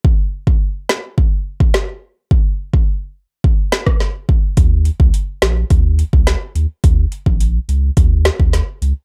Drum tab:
HH |----------------|----------------|x-x-x-x-x-x-x-x-|x-x-x-x-x-x-x-x-|
SD |------o-----o---|----------oro---|------o-----o---|----------o-o---|
BD |o--o----o--o----|o--o----o--o--o-|o--o----o--o----|o--o----o--o----|